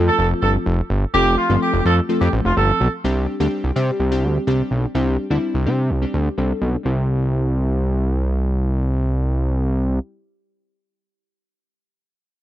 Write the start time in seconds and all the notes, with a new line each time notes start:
Already playing: F3 A3 C4 F4 A4
0.07 A4
0.19 F1
0.42 G1 A4
0.66 F1
0.90 G1
1.14 F1 F3 A3 C4 F4 G4 A4
1.38 F4
1.49 G1 F3 A3 C4 F4 A4
1.62 G4
1.74 F1
1.85 F2 A4
2.09 F3 A3 C4 F4 A4
2.21 F2 G4
2.33 A1
2.45 F1 F4
2.57 G1 A4
2.81 B1
3.04 C2 G3 C4 D4 G4
3.40 D2 G3 C4 D4 G4
3.64 C2
3.76 C3 G3 C4 D4 G4
4.00 C2
4.11 G3 C4 D4 G4
4.24 D2
4.47 C2 G3 C4 D4 G4
4.71 B1
4.95 C2 G3 C4 D4 G4
5.30 D2 G3 C4 D4 E4
5.54 C2
5.66 C3 G3 C4 D4 G4
5.90 C2
6.02 G3 C4 D4 G4
6.14 D2
6.38 C2 G3 C4 D4 A4
6.62 B1
6.83 C2 G3 C4 E4
6.87 G4